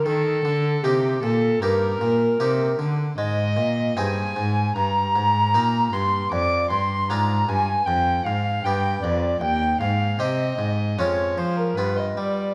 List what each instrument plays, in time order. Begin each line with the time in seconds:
0.06 harpsichord D#3, cello D#3, violin A4, recorder A4
0.45 harpsichord D3, cello D3
0.84 harpsichord C3 A#3 D#4 G4, cello C3, violin G4, recorder G4
1.23 harpsichord A#2, cello A#2, violin A4, recorder A4
1.60 harpsichord G2 A#3 D#4 G4, cello G2, violin A#4, recorder A#4
2.01 harpsichord A#2, cello A#2
2.40 harpsichord C3 A#3 D#4 G4, cello C3
2.79 cello D3, harpsichord D3
3.18 cello G#2, harpsichord G#2 G#3, violin D#5, recorder D#5
3.57 harpsichord A#2, cello A#2
3.97 harpsichord G2 C4 D#4 G#4, cello G2, violin G#5, recorder G#5
4.36 harpsichord G#2, cello G#2
4.75 cello G2, harpsichord G2, violin A#5, recorder A#5
5.16 harpsichord G#2, cello G#2
5.54 harpsichord A#2 A#3 D#4 A#4, cello A#2
5.93 cello G2, harpsichord G2, violin C6, recorder C6
6.32 harpsichord F2, cello F2, recorder D5, violin D6
6.70 harpsichord G2, cello G2, violin C6, recorder C6
7.09 harpsichord G#2 G#3 D4 F4, cello G#2, recorder A#5, violin A#5
7.48 harpsichord G2, cello G2, recorder G#5, violin G#5
7.86 cello F2, harpsichord F2, recorder G5, violin G5
8.25 cello G#2, harpsichord G#2, recorder F5, violin F5
8.63 cello G2, harpsichord G2 B3 G4, recorder G5, violin G5
9.02 cello F2, harpsichord F2, recorder D5, violin D5
9.41 cello D#2, harpsichord D#2, violin G5, recorder G5
9.80 cello G#2, harpsichord G#2, recorder F5, violin F5
10.19 harpsichord C3 C4 G4, cello C3, violin D#5, recorder D#5
10.59 cello G#2, harpsichord G#2
10.98 cello F2, harpsichord F2 G#3 C#4 F4, violin C#5, recorder C#5
11.38 harpsichord F3, cello F3, violin C5, recorder C5
11.56 violin A#4, recorder A#4
11.75 cello G2, harpsichord G2 B3 F4, violin B4, recorder B4
11.96 violin D#5, recorder D#5
12.17 harpsichord G3, cello G3, violin D5, recorder D5